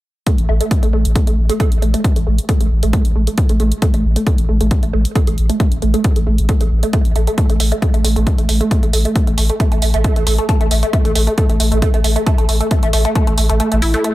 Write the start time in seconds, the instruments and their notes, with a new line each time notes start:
0.27 synth arpeggio sound A3, kick, closed hi-hat
0.38 sub bass A1, closed hi-hat
0.49 sub bass A1, synth arpeggio sound A3
0.61 synth arpeggio sound A3, closed hi-hat
0.71 kick, closed hi-hat
0.83 sub bass A1, synth arpeggio sound A3, closed hi-hat
0.93 sub bass A1, synth arpeggio sound A3
1.05 sub bass A1, closed hi-hat
1.16 synth arpeggio sound A3, kick, closed hi-hat
1.27 sub bass A1, synth arpeggio sound A3, closed hi-hat
1.38 sub bass A1
1.49 synth arpeggio sound A3, closed hi-hat
1.60 synth arpeggio sound A3, kick, closed hi-hat
1.72 sub bass A1, closed hi-hat
1.82 sub bass A1, synth arpeggio sound A3, closed hi-hat
1.94 synth arpeggio sound A3, closed hi-hat
2.04 kick, closed hi-hat
2.16 sub bass A1, synth arpeggio sound A3, closed hi-hat
2.27 sub bass A1, synth arpeggio sound A3
2.38 closed hi-hat
2.49 synth arpeggio sound A3, kick, closed hi-hat
2.61 sub bass A1, synth arpeggio sound A3, closed hi-hat
2.71 sub bass A1
2.83 sub bass A1, synth arpeggio sound A3, closed hi-hat
2.93 synth arpeggio sound A3, kick, closed hi-hat
3.05 sub bass A1, closed hi-hat
3.15 sub bass A1, synth arpeggio sound A3
3.27 synth arpeggio sound A3, closed hi-hat
3.38 kick, closed hi-hat
3.49 sub bass A1, synth arpeggio sound A3, closed hi-hat
3.60 sub bass A1, synth arpeggio sound A3, closed hi-hat
3.72 closed hi-hat
3.82 synth arpeggio sound A3, kick, closed hi-hat
3.94 sub bass A1, synth arpeggio sound A3, closed hi-hat
4.04 sub bass A1
4.16 synth arpeggio sound A3, closed hi-hat
4.27 synth arpeggio sound A3, kick, closed hi-hat
4.38 sub bass A1, closed hi-hat
4.49 sub bass A1, synth arpeggio sound A3
4.61 sub bass A1, synth arpeggio sound A3, closed hi-hat
4.71 kick, closed hi-hat
4.83 sub bass A1, synth arpeggio sound A3, closed hi-hat
4.93 sub bass A1, synth arpeggio sound A3
5.05 closed hi-hat
5.15 synth arpeggio sound A3, kick, closed hi-hat
5.27 sub bass A1, synth arpeggio sound A3, closed hi-hat
5.38 sub bass A1, closed hi-hat
5.49 synth arpeggio sound A3, closed hi-hat
5.60 synth arpeggio sound A3, kick, closed hi-hat
5.72 sub bass A1, closed hi-hat
5.82 sub bass A1, synth arpeggio sound A3, closed hi-hat
5.94 synth arpeggio sound A3, closed hi-hat
6.04 kick, closed hi-hat
6.16 sub bass A1, synth arpeggio sound A3, closed hi-hat
6.27 sub bass A1, synth arpeggio sound A3
6.38 sub bass A1, closed hi-hat
6.49 synth arpeggio sound A3, kick, closed hi-hat
6.61 sub bass A1, synth arpeggio sound A3, closed hi-hat
6.71 sub bass A1
6.83 synth arpeggio sound A3, closed hi-hat
6.93 synth arpeggio sound A3, kick, closed hi-hat
7.05 sub bass A1, closed hi-hat
7.16 sub bass A1, synth arpeggio sound A3, closed hi-hat
7.27 synth arpeggio sound A3, closed hi-hat
7.38 synth arpeggio sound A3, kick, closed hi-hat
7.50 sub bass A1, synth arpeggio sound A3, closed hi-hat
7.60 sub bass A1, synth arpeggio sound A3, open hi-hat
7.72 synth arpeggio sound A3, closed hi-hat
7.82 synth arpeggio sound A3, kick, closed hi-hat
7.94 sub bass A1, synth arpeggio sound A3, closed hi-hat
8.04 sub bass A1, synth arpeggio sound A3, open hi-hat
8.16 sub bass A1, synth arpeggio sound A3, closed hi-hat
8.27 synth arpeggio sound A3, kick, closed hi-hat
8.38 sub bass A1, synth arpeggio sound A3, closed hi-hat
8.49 sub bass A1, synth arpeggio sound A3, open hi-hat
8.61 synth arpeggio sound A3, closed hi-hat
8.71 synth arpeggio sound A3, kick, closed hi-hat
8.83 sub bass A1, synth arpeggio sound A3, closed hi-hat
8.93 sub bass A1, synth arpeggio sound A3, open hi-hat
9.05 synth arpeggio sound A3, closed hi-hat
9.16 synth arpeggio sound A3, kick, closed hi-hat
9.27 sub bass A1, synth arpeggio sound A3, closed hi-hat
9.38 sub bass A1, synth arpeggio sound A3, open hi-hat
9.49 synth arpeggio sound A3, closed hi-hat
9.60 synth arpeggio sound A3, kick, closed hi-hat
9.72 sub bass A1, synth arpeggio sound A3, closed hi-hat
9.82 sub bass A1, synth arpeggio sound A3, open hi-hat
9.94 sub bass A1, synth arpeggio sound A3, closed hi-hat
10.04 synth arpeggio sound A3, kick, closed hi-hat
10.16 sub bass A1, synth arpeggio sound A3, closed hi-hat
10.27 sub bass A1, synth arpeggio sound A3, open hi-hat
10.38 synth arpeggio sound A3, closed hi-hat
10.49 synth arpeggio sound A3, kick, closed hi-hat
10.61 sub bass A1, synth arpeggio sound A3, closed hi-hat
10.71 sub bass A1, synth arpeggio sound A3, open hi-hat
10.83 synth arpeggio sound A3, closed hi-hat
10.93 synth arpeggio sound A3, kick, closed hi-hat
11.05 sub bass A1, synth arpeggio sound A3, closed hi-hat
11.15 sub bass A1, synth arpeggio sound A3, open hi-hat
11.27 synth arpeggio sound A3, closed hi-hat
11.38 synth arpeggio sound A3, kick, closed hi-hat
11.50 sub bass A1, synth arpeggio sound A3, closed hi-hat
11.60 sub bass A1, synth arpeggio sound A3, open hi-hat
11.72 sub bass A1, synth arpeggio sound A3, closed hi-hat
11.82 synth arpeggio sound A3, kick, closed hi-hat
11.94 sub bass A1, synth arpeggio sound A3, closed hi-hat
12.04 sub bass A1, synth arpeggio sound A3, open hi-hat
12.16 synth arpeggio sound A3, closed hi-hat
12.26 synth arpeggio sound A3, kick, closed hi-hat
12.38 sub bass A1, synth arpeggio sound A3, closed hi-hat
12.49 sub bass A1, synth arpeggio sound A3, open hi-hat
12.60 synth arpeggio sound A3, closed hi-hat
12.71 synth arpeggio sound A3, kick, closed hi-hat
12.83 sub bass A1, synth arpeggio sound A3, closed hi-hat
12.93 sub bass A1, synth arpeggio sound A3, open hi-hat
13.05 synth arpeggio sound A3, closed hi-hat
13.15 synth arpeggio sound A3, kick, closed hi-hat
13.27 sub bass A1, synth arpeggio sound A3, closed hi-hat
13.38 sub bass A1, synth arpeggio sound A3, open hi-hat
13.49 sub bass A1, synth arpeggio sound A3, closed hi-hat
13.60 synth arpeggio sound A3, closed hi-hat
13.72 sub bass A1, synth arpeggio sound A3, closed hi-hat
13.82 sub bass A1, synth arpeggio sound E4, open hi-hat
13.94 synth arpeggio sound A3, closed hi-hat
14.04 synth arpeggio sound A3, closed hi-hat